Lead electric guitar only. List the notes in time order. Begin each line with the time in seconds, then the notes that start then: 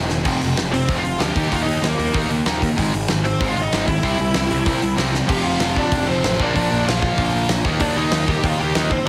0.72 C4 C5
0.96 F4 F5
1.20 G4 G5
1.53 F4 F5
1.61 D#4 D#5
1.86 A#3 A#4
3.24 C4 C5
3.47 F4 F5
3.61 D#4 D#5
3.86 E4 E5
5.28 G4 G5
5.44 F4 F5
5.76 D4 D5
6.06 C4 C5
6.39 D4 D5
6.54 D4 D5
6.86 F4 F5
7.01 F4 F5
7.80 D4 D5
7.95 D#4 D#5
8.29 G4 G5
8.46 F4 F5
8.59 G4 G5
8.75 D#4 D#5
8.90 C4 C5
9.05 D5